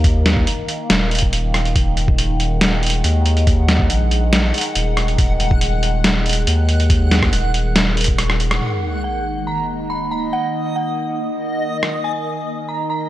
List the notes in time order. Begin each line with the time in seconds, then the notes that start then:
Already playing: D#2 D#3 A#3
0.04 kick, closed hi-hat
0.26 snare, closed hi-hat
0.37 kick
0.47 closed hi-hat
0.68 closed hi-hat
0.90 D#1, snare, closed hi-hat
1.11 closed hi-hat
1.15 closed hi-hat
1.19 kick, closed hi-hat
1.33 closed hi-hat
1.54 cross-stick, closed hi-hat
1.65 closed hi-hat
1.76 D#1 G#3 F#5, kick, closed hi-hat
1.97 closed hi-hat
2.08 kick
2.18 closed hi-hat
2.40 closed hi-hat
2.61 snare, closed hi-hat
2.83 closed hi-hat
2.87 closed hi-hat
2.90 closed hi-hat
3.04 D#2, closed hi-hat
3.26 closed hi-hat
3.37 closed hi-hat
3.47 kick, closed hi-hat
3.69 snare, closed hi-hat
3.80 kick
3.90 A#1, closed hi-hat
4.11 closed hi-hat
4.33 snare, closed hi-hat
4.54 closed hi-hat
4.58 closed hi-hat
4.61 closed hi-hat
4.75 D#1, closed hi-hat
4.97 cross-stick, closed hi-hat
5.08 closed hi-hat
5.18 D#1, kick, closed hi-hat
5.40 closed hi-hat
5.51 kick
5.61 closed hi-hat
5.83 closed hi-hat
6.04 snare, closed hi-hat
6.26 closed hi-hat
6.29 closed hi-hat
6.33 closed hi-hat
6.47 D#2, closed hi-hat
6.69 closed hi-hat
6.80 closed hi-hat
6.90 kick, closed hi-hat
7.11 snare, closed hi-hat
7.22 kick, cross-stick
7.33 D#1, closed hi-hat
7.54 closed hi-hat
7.76 snare, closed hi-hat
7.97 closed hi-hat
8.01 closed hi-hat
8.04 kick, closed hi-hat
8.18 cross-stick, closed hi-hat
8.30 cross-stick
8.40 closed hi-hat
8.51 cross-stick, closed hi-hat
8.61 D#3 A#3 D#5, sub drop
9.04 F#5
9.47 A#5
9.90 B5
10.11 A#5
10.33 F#5
10.76 F#5
11.83 cross-stick
12.04 G#5
12.69 A#5
12.90 A#5